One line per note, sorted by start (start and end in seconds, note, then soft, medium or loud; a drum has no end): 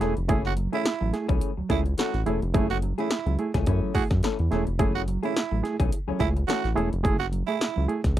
0.00 0.15 E1 medium
0.00 0.19 E3 medium
0.00 0.13 A3 medium
0.00 0.16 A3 medium
0.00 0.16 C#4 medium
0.00 0.13 E4 medium
0.00 0.13 G#4 loud
0.00 0.16 A4 medium
0.00 snare soft
0.00 closed hi-hat medium
0.17 0.28 F1 medium
0.17 muted hollow-body jazz guitar stroke soft
0.17 closed hi-hat medium
0.28 0.68 F#1 loud
0.28 0.51 E3 medium
0.28 0.41 A3 medium
0.28 0.51 A3 medium
0.28 0.52 C#4 loud
0.28 0.41 E4 medium
0.28 0.42 G#4 loud
0.28 0.52 G#4 medium
0.28 kick loud
0.28 closed hi-hat medium
0.45 0.53 F#4 medium
0.45 snare soft
0.56 0.70 F#3 medium
0.56 muted hollow-body jazz guitar stroke soft
0.56 closed hi-hat medium
0.72 0.84 E3 soft
0.72 0.83 A3 medium
0.72 0.84 A3 medium
0.72 0.85 C#4 medium
0.72 0.83 E4 medium
0.72 1.12 E4 medium
0.72 0.85 G#4 medium
0.72 0.83 G#4 medium
0.72 closed hi-hat soft
0.85 0.92 E4 soft
0.85 0.92 G#4 soft
0.85 muted hollow-body jazz guitar stroke soft
0.85 snare loud
0.85 closed hi-hat medium
1.01 1.12 A1 medium
1.01 1.11 F#3 medium
1.01 muted hollow-body jazz guitar stroke soft
1.13 1.26 A3 medium
1.13 1.26 E4 medium
1.13 1.26 G#4 medium
1.13 snare soft
1.13 closed hi-hat medium
1.28 1.40 B1 medium
1.28 1.51 E3 medium
1.28 1.50 A3 medium
1.28 1.50 C#4 medium
1.28 1.50 G#4 medium
1.28 kick loud
1.28 closed hi-hat medium
1.41 1.48 E4 soft
1.41 1.48 G#4 soft
1.41 closed hi-hat loud
1.57 1.63 C#2 soft
1.57 1.67 F#3 medium
1.57 muted hollow-body jazz guitar stroke soft
1.69 1.95 C#2 medium
1.69 1.92 E3 medium
1.69 1.82 A3 medium
1.69 1.86 A3 medium
1.69 1.85 C#4 medium
1.69 1.83 E4 medium
1.69 1.80 E4 medium
1.69 1.82 G#4 medium
1.69 1.84 G#4 medium
1.69 kick medium
1.69 snare soft
1.69 closed hi-hat medium
1.86 muted hollow-body jazz guitar stroke soft
1.86 closed hi-hat soft
1.97 2.20 E3 medium
1.97 2.14 A3 medium
1.97 2.13 C#4 medium
1.97 2.21 F#4 medium
1.97 2.14 A4 medium
1.97 snare loud
1.97 closed hi-hat medium
2.14 2.25 A1 loud
2.14 muted hollow-body jazz guitar stroke soft
2.14 snare soft
2.14 closed hi-hat soft
2.26 2.40 E1 medium
2.26 2.44 E3 medium
2.26 2.39 A3 medium
2.26 2.43 A3 medium
2.26 2.42 C#4 medium
2.26 2.39 E4 medium
2.26 2.39 G#4 medium
2.26 2.42 A4 medium
2.26 closed hi-hat medium
2.42 2.53 F1 loud
2.42 muted hollow-body jazz guitar stroke soft
2.42 closed hi-hat medium
2.54 2.93 F#1 loud
2.54 2.77 E3 medium
2.54 2.66 A3 loud
2.54 2.77 A3 medium
2.54 2.77 C#4 medium
2.54 2.67 E4 medium
2.54 2.67 G#4 medium
2.54 2.78 G#4 medium
2.54 kick loud
2.54 closed hi-hat medium
2.70 2.78 F#4 medium
2.70 snare soft
2.70 closed hi-hat soft
2.82 2.95 F#3 medium
2.82 muted hollow-body jazz guitar stroke soft
2.82 closed hi-hat medium
2.98 3.09 E3 medium
2.98 3.08 A3 medium
2.98 3.10 A3 medium
2.98 3.10 C#4 medium
2.98 3.08 E4 medium
2.98 3.37 E4 medium
2.98 3.11 G#4 medium
2.98 3.08 G#4 medium
2.98 closed hi-hat soft
3.10 3.17 E4 soft
3.10 3.17 G#4 soft
3.10 muted hollow-body jazz guitar stroke soft
3.10 snare loud
3.10 closed hi-hat medium
3.26 3.37 C#2 medium
3.26 3.36 F#3 medium
3.26 muted hollow-body jazz guitar stroke soft
3.26 closed hi-hat soft
3.39 3.51 A3 medium
3.39 3.51 E4 medium
3.39 3.51 G#4 medium
3.39 closed hi-hat medium
3.54 3.65 C#2 medium
3.54 3.66 E3 medium
3.54 3.66 A3 medium
3.54 3.67 C#4 medium
3.54 3.68 G#4 medium
3.54 kick medium
3.54 snare soft
3.54 closed hi-hat medium
3.66 3.81 F#2 loud
3.66 3.93 E3 medium
3.66 3.93 A3 medium
3.66 3.94 C#4 medium
3.66 3.73 E4 soft
3.66 3.73 G#4 soft
3.66 3.94 G#4 medium
3.66 kick medium
3.66 closed hi-hat loud
3.82 3.92 F#3 medium
3.95 4.01 F#2 soft
3.95 4.07 A3 medium
3.95 4.07 E4 medium
3.95 4.04 F#4 medium
3.95 4.07 G#4 medium
3.95 muted hollow-body jazz guitar stroke soft
3.95 kick medium
3.95 open hi-hat medium
4.11 4.22 F#2 loud
4.11 muted hollow-body jazz guitar stroke soft
4.11 kick medium
4.11 snare soft
4.11 closed hi-hat soft
4.23 4.45 E3 medium
4.23 4.39 A3 medium
4.23 4.39 C#4 medium
4.23 4.39 A4 medium
4.23 snare medium
4.23 closed hi-hat medium
4.39 4.50 E2 medium
4.39 muted hollow-body jazz guitar stroke soft
4.39 closed hi-hat soft
4.51 4.65 E1 medium
4.51 4.70 E3 medium
4.51 4.63 A3 medium
4.51 4.67 A3 medium
4.51 4.67 C#4 medium
4.51 4.64 E4 medium
4.51 4.64 G#4 loud
4.51 4.67 A4 medium
4.51 snare soft
4.51 closed hi-hat medium
4.67 4.78 F1 medium
4.67 muted hollow-body jazz guitar stroke soft
4.67 closed hi-hat medium
4.79 5.18 F#1 loud
4.79 5.01 E3 medium
4.79 4.91 A3 medium
4.79 5.02 A3 medium
4.79 5.02 C#4 medium
4.79 4.92 E4 medium
4.79 4.92 G#4 loud
4.79 5.02 G#4 medium
4.79 kick loud
4.79 closed hi-hat medium
4.95 5.02 F#4 medium
4.95 snare soft
5.08 5.20 F#3 medium
5.08 muted hollow-body jazz guitar stroke soft
5.08 closed hi-hat medium
5.23 5.34 E3 medium
5.23 5.33 A3 medium
5.23 5.35 A3 medium
5.23 5.35 C#4 medium
5.23 5.33 E4 medium
5.23 5.62 E4 medium
5.23 5.35 G#4 medium
5.23 5.33 G#4 medium
5.23 closed hi-hat medium
5.35 5.42 E4 soft
5.35 5.42 G#4 soft
5.35 muted hollow-body jazz guitar stroke soft
5.35 snare loud
5.35 closed hi-hat medium
5.51 5.62 A1 medium
5.51 5.61 F#3 medium
5.51 muted hollow-body jazz guitar stroke soft
5.63 5.76 A3 medium
5.63 5.76 E4 medium
5.63 5.76 G#4 medium
5.63 snare soft
5.63 closed hi-hat medium
5.80 5.91 B1 medium
5.80 5.91 E3 medium
5.80 5.91 A3 medium
5.80 5.92 C#4 medium
5.80 5.92 G#4 medium
5.80 kick loud
5.80 closed hi-hat medium
5.92 5.98 E4 soft
5.92 5.98 G#4 soft
5.92 muted hollow-body jazz guitar stroke soft
5.92 closed hi-hat loud
6.07 6.13 C#2 medium
6.07 6.19 E3 medium
6.07 6.17 F#3 medium
6.07 6.19 A3 medium
6.07 6.20 C#4 medium
6.07 6.21 G#4 medium
6.19 6.45 C#2 medium
6.19 6.32 A3 medium
6.19 6.32 E4 medium
6.19 6.29 E4 medium
6.19 6.32 G#4 medium
6.19 muted hollow-body jazz guitar stroke soft
6.19 kick medium
6.19 snare soft
6.19 closed hi-hat medium
6.36 muted hollow-body jazz guitar stroke soft
6.36 closed hi-hat soft
6.48 6.70 E3 medium
6.48 6.64 A3 medium
6.48 6.64 C#4 medium
6.48 6.70 F#4 loud
6.48 6.64 A4 medium
6.48 snare loud
6.48 closed hi-hat medium
6.64 6.75 A1 loud
6.64 muted hollow-body jazz guitar stroke soft
6.64 snare soft
6.64 closed hi-hat soft
6.75 6.90 E1 medium
6.75 6.94 E3 medium
6.75 6.88 A3 medium
6.75 6.92 A3 medium
6.75 6.92 C#4 medium
6.75 6.88 E4 medium
6.75 6.88 G#4 loud
6.75 6.92 A4 medium
6.75 closed hi-hat medium
6.92 7.03 F1 loud
6.92 muted hollow-body jazz guitar stroke soft
6.92 closed hi-hat medium
7.03 7.43 F#1 loud
7.03 7.16 A3 medium
7.03 7.16 E4 medium
7.03 7.16 G#4 loud
7.03 kick loud
7.03 closed hi-hat medium
7.19 7.27 F#4 medium
7.19 snare soft
7.32 7.45 F#3 medium
7.32 closed hi-hat medium
7.47 7.58 A3 medium
7.47 7.85 E4 medium
7.47 7.58 E4 medium
7.47 7.58 G#4 medium
7.47 closed hi-hat soft
7.60 7.67 E4 soft
7.60 7.66 G#4 soft
7.60 snare loud
7.60 closed hi-hat medium
7.76 7.87 C#2 medium
7.76 7.86 F#3 medium
7.88 8.01 A3 medium
7.88 8.01 E4 medium
7.88 8.01 G#4 medium
7.88 closed hi-hat medium
8.04 8.15 C#2 medium
8.04 kick loud
8.04 snare soft
8.04 closed hi-hat medium